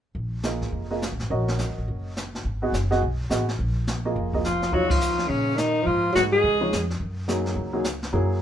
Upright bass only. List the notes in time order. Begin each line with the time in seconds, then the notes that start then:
0.15 A#1
0.61 G#1
0.72 F1
1.12 A#1
1.21 G#1
1.30 A#1
1.69 C#2
1.78 A1
1.88 F#1
2.44 G#1
2.72 F#1
3.02 B1
3.30 A1
3.59 A#1
4.16 F1
4.72 D#2
5.30 A#2
5.87 G#2
6.15 G#2
6.44 C#2
6.73 F2
7.00 F#2
7.56 C#2
8.13 F#2